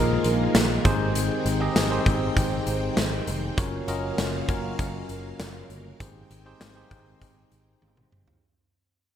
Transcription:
0.00 0.16 A#1 loud
0.00 3.54 D#3 medium
0.00 3.54 G#3 medium
0.00 0.83 A#3 medium
0.00 0.87 A#3 medium
0.00 0.85 D#4 medium
0.00 0.83 F4 medium
0.00 0.87 F4 medium
0.00 0.85 G#4 medium
0.00 0.86 A#4 loud
0.00 0.85 C5 loud
0.24 0.46 A#1 loud
0.24 closed hi-hat medium
0.55 0.77 A#1 loud
0.55 snare loud
0.55 closed hi-hat medium
0.55 tambourine medium
0.84 1.29 G#1 loud
0.84 1.52 C4 loud
0.84 3.55 C4 medium
0.84 1.53 D#4 medium
0.84 1.53 G4 medium
0.84 1.53 G#4 medium
0.84 1.53 C5 loud
0.84 3.55 G5 medium
0.84 kick loud
0.84 closed hi-hat medium
1.15 closed hi-hat loud
1.46 1.67 G#1 loud
1.46 closed hi-hat medium
1.60 1.88 C4 loud
1.60 1.88 D#4 medium
1.60 1.88 G4 medium
1.60 1.88 G#4 medium
1.60 1.88 D#5 loud
1.76 1.98 G#1 medium
1.76 snare loud
1.76 closed hi-hat medium
1.76 tambourine medium
1.90 2.99 C4 medium
1.90 2.99 D#4 medium
1.90 2.99 G4 medium
1.90 3.00 G#4 medium
1.90 3.00 C5 loud
2.06 2.28 G#1 loud
2.06 kick loud
2.06 closed hi-hat medium
2.37 2.58 G#1 loud
2.37 kick medium
2.37 closed hi-hat medium
2.67 2.89 G#1 loud
2.67 closed hi-hat medium
2.97 3.19 G#1 loud
2.97 snare loud
2.97 closed hi-hat medium
2.97 tambourine medium
3.27 3.49 F1 medium
3.27 closed hi-hat medium
3.57 3.80 F#1 loud
3.57 5.98 C#3 medium
3.57 5.98 F#3 medium
3.57 5.98 A#3 medium
3.57 3.85 C#4 medium
3.57 3.85 F4 medium
3.57 3.85 F#4 medium
3.57 3.85 A#4 medium
3.57 3.85 C#5 loud
3.57 5.98 F5 medium
3.57 kick loud
3.57 closed hi-hat medium
3.87 4.10 F#1 loud
3.87 4.42 C#4 medium
3.87 4.42 F4 medium
3.87 4.42 F#4 medium
3.87 4.42 A#4 medium
3.87 4.43 D#5 loud
3.87 closed hi-hat medium
4.18 4.40 F#1 loud
4.18 snare loud
4.18 closed hi-hat medium
4.18 tambourine medium
4.48 4.70 F#1 loud
4.48 5.57 C#4 medium
4.48 5.57 F4 medium
4.48 5.57 F#4 medium
4.48 5.57 A#4 medium
4.48 5.57 C#5 loud
4.48 kick loud
4.48 closed hi-hat medium
4.79 5.01 F#1 loud
4.79 kick medium
4.79 closed hi-hat medium
5.09 5.31 F#1 medium
5.09 closed hi-hat medium
5.40 5.61 F#1 loud
5.40 snare loud
5.40 closed hi-hat medium
5.40 tambourine medium
5.70 5.92 G1 loud
5.70 closed hi-hat medium
6.00 6.22 G#1 loud
6.00 8.40 D#3 medium
6.00 8.40 G#3 medium
6.00 6.41 C4 medium
6.00 8.40 C4 medium
6.00 6.41 D#4 medium
6.00 6.41 G4 medium
6.00 6.41 G#4 medium
6.00 6.41 C5 loud
6.00 8.40 G5 medium
6.00 kick loud
6.00 closed hi-hat loud
6.31 6.52 G#1 loud
6.31 closed hi-hat medium
6.45 6.73 C4 medium
6.45 6.73 D#4 medium
6.45 6.73 G4 medium
6.45 6.73 G#4 medium
6.45 6.73 C5 loud
6.61 6.83 G#1 medium
6.61 snare loud
6.61 closed hi-hat medium
6.61 tambourine medium
6.76 7.84 C4 medium
6.76 7.84 D#4 medium
6.76 7.84 G4 medium
6.76 7.85 G#4 medium
6.76 7.85 C5 loud
6.91 7.13 G#1 loud
6.91 kick loud
6.91 closed hi-hat medium
7.22 7.43 G#1 loud
7.22 kick medium
7.22 closed hi-hat medium
7.52 7.74 G#1 medium
7.52 closed hi-hat medium
7.82 8.04 G#1 loud
7.82 high tom medium
7.97 mid tom medium
8.12 8.34 G1 medium
8.12 mid tom medium
8.28 floor tom medium

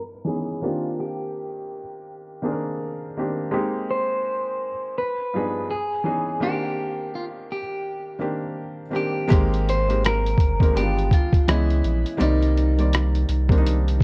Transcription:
0.24 0.56 E3 medium
0.24 0.57 B3 medium
0.24 0.57 C#4 medium
0.24 0.57 D#4 medium
0.24 0.58 G#4 medium
0.24 0.37 G#4 medium
0.62 1.79 D#3 medium
0.62 1.80 A#3 medium
0.62 1.80 C4 medium
0.62 1.80 D4 medium
0.62 1.01 F4 medium
0.62 1.80 G4 medium
1.00 2.40 G4 medium
2.42 3.04 D#3 medium
2.42 3.04 A#3 medium
2.42 3.05 C4 medium
2.42 3.05 D4 medium
2.42 2.52 G#4 medium
2.51 3.08 A#4 medium
3.17 3.47 D#3 medium
3.17 3.47 A#3 medium
3.17 3.48 C4 medium
3.17 3.48 D4 medium
3.17 3.48 G4 medium
3.51 4.69 G#3 loud
3.51 4.69 A#3 medium
3.51 4.69 C4 loud
3.51 4.70 D#4 medium
3.51 4.70 G4 loud
3.91 4.98 C5 medium
4.98 5.70 B4 medium
5.34 5.70 G2 medium
5.34 5.70 F3 medium
5.34 5.70 B3 medium
5.34 5.71 D4 medium
5.34 5.71 D#4 medium
5.34 5.71 G#4 medium
5.71 6.43 G#4 medium
6.04 6.35 E3 medium
6.04 6.35 B3 medium
6.04 6.36 C#4 medium
6.04 6.36 D#4 medium
6.04 6.36 G#4 medium
6.40 7.58 D#3 medium
6.40 7.58 A#3 medium
6.40 7.58 C4 medium
6.40 7.59 D4 medium
6.40 7.59 G4 loud
6.40 7.11 G4 medium
7.15 7.25 F4 medium
7.52 8.19 G4 medium
8.19 8.81 D#3 medium
8.19 8.82 A#3 medium
8.19 8.82 C4 medium
8.19 8.82 D4 medium
8.19 8.83 G4 medium
8.90 9.23 D#3 medium
8.90 9.23 A#3 medium
8.90 9.23 C4 medium
8.90 9.24 D4 medium
8.90 9.24 G4 medium
8.96 9.29 G4 medium
9.28 10.36 G#1 loud
9.28 9.74 D#3 loud
9.28 9.74 G#3 loud
9.28 9.75 A#3 loud
9.28 9.75 C4 medium
9.28 9.75 G4 loud
9.28 kick loud
9.32 closed hi-hat medium
9.54 closed hi-hat soft
9.69 10.05 C5 medium
9.69 closed hi-hat medium
9.88 10.43 D#3 medium
9.88 10.43 G#3 medium
9.88 10.44 A#3 medium
9.88 10.44 C4 medium
9.88 10.44 G4 medium
9.88 closed hi-hat soft
10.04 10.73 A#4 loud
10.04 cross-stick loud
10.04 closed hi-hat medium
10.26 closed hi-hat soft
10.38 10.73 G1 medium
10.38 kick medium
10.38 closed hi-hat medium
10.60 10.72 D#3 medium
10.60 10.72 G#3 medium
10.60 10.76 A#3 medium
10.60 10.76 C4 medium
10.60 10.76 A#4 medium
10.60 kick medium
10.60 closed hi-hat soft
10.73 11.10 G1 loud
10.73 11.35 D#3 medium
10.73 11.35 G#3 medium
10.73 11.36 B3 medium
10.73 11.36 D4 medium
10.73 10.84 D#4 medium
10.73 11.13 G4 loud
10.73 closed hi-hat medium
10.82 11.40 F4 medium
10.99 closed hi-hat soft
11.11 11.46 F4 medium
11.11 kick medium
11.11 closed hi-hat medium
11.33 kick medium
11.33 closed hi-hat medium
11.48 11.82 C#2 loud
11.48 12.09 E3 medium
11.48 12.09 G#3 medium
11.48 12.09 B3 medium
11.48 12.10 C#4 medium
11.48 12.22 E4 medium
11.48 12.10 D#5 medium
11.48 cross-stick loud
11.48 closed hi-hat medium
11.70 closed hi-hat soft
11.84 12.05 A#1 medium
11.84 closed hi-hat medium
12.06 closed hi-hat soft
12.17 13.25 C2 loud
12.17 12.63 D#3 medium
12.17 12.64 G3 medium
12.17 12.64 A#3 medium
12.17 12.64 C4 medium
12.17 12.65 D5 loud
12.17 closed hi-hat medium
12.22 14.04 D#4 medium
12.42 closed hi-hat soft
12.57 closed hi-hat medium
12.78 13.33 D#3 medium
12.78 13.33 G3 medium
12.78 13.33 A#3 medium
12.78 13.33 C4 medium
12.78 13.34 D5 medium
12.78 closed hi-hat soft
12.93 cross-stick loud
12.93 closed hi-hat medium
13.15 closed hi-hat soft
13.29 14.04 C2 medium
13.29 closed hi-hat medium
13.48 14.04 D#3 medium
13.48 14.04 G3 medium
13.48 14.04 A#3 medium
13.48 14.04 C4 medium
13.48 13.56 D4 medium
13.48 kick medium
13.48 closed hi-hat soft
13.58 14.04 D#4 medium
13.66 closed hi-hat medium
13.88 closed hi-hat soft
14.00 kick medium

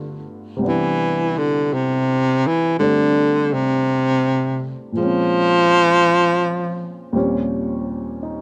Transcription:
0.00 0.60 G2 soft
0.00 0.26 D3 medium
0.00 0.61 D3 soft
0.00 0.62 A3 soft
0.00 0.61 B3 soft
0.00 0.65 F4 medium
0.57 4.95 C3 soft
0.57 2.78 G3 soft
0.62 4.98 B3 soft
0.62 2.81 D4 soft
0.67 1.40 E3 medium
0.67 5.00 E4 medium
1.38 1.75 D3 medium
1.74 2.49 C3 medium
2.47 2.79 E3 medium
2.79 3.55 D3 medium
2.79 4.97 G3 soft
2.79 4.98 A3 soft
2.79 4.98 C4 soft
2.79 4.99 D4 soft
3.54 4.80 C3 medium
4.92 7.11 A#2 soft
4.92 7.12 F3 soft
4.97 7.10 F3 loud
4.97 7.14 G#3 soft
4.97 7.14 C4 soft
5.03 7.15 C#4 soft
7.13 8.41 D#2 soft
7.13 8.41 A#2 soft
7.13 8.41 F3 soft
7.13 8.41 G3 soft
7.13 8.41 C4 soft
7.17 8.41 C#4 medium
8.23 8.41 D#4 soft

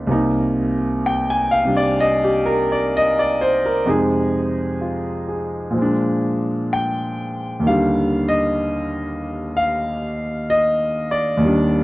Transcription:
0.00 0.10 C#2 medium
0.00 0.11 C#3 soft
0.00 0.10 A#3 soft
0.00 0.11 B3 medium
0.07 3.85 C2 medium
0.07 1.64 C3 soft
0.07 3.87 A#3 soft
0.12 3.86 D#4 medium
1.06 1.35 G5 medium
1.30 1.62 G#5 medium
1.51 1.74 F5 medium
1.65 3.85 C3 soft
1.65 3.87 G3 soft
1.65 3.87 D4 soft
1.77 1.94 D5 medium
2.00 2.29 D#5 medium
2.24 2.57 G4 medium
2.46 2.68 A#4 medium
2.72 2.89 D5 medium
2.97 3.25 D#5 medium
3.19 3.51 D5 medium
3.41 3.63 C5 medium
3.66 3.83 A#4 medium
3.86 5.75 F2 medium
3.86 5.75 C3 medium
3.86 5.75 G#3 medium
3.86 5.75 D#4 medium
3.86 5.27 G#4 medium
4.81 5.55 F4 soft
5.28 5.95 G#4 soft
5.71 7.62 A#2 medium
5.71 7.63 F3 soft
5.78 7.65 G#3 soft
5.78 7.67 D4 medium
6.73 7.61 G5 medium
7.60 11.36 D#2 medium
7.60 11.39 D#3 medium
7.67 11.45 D3 medium
7.67 11.42 G3 medium
7.67 8.26 F5 medium
8.28 9.50 D#5 medium
9.57 10.45 F5 medium
10.50 11.09 D#5 medium
11.11 11.84 D5 medium
11.37 11.84 D#2 medium
11.37 11.84 D#3 medium
11.44 11.84 G3 medium
11.44 11.84 D4 medium

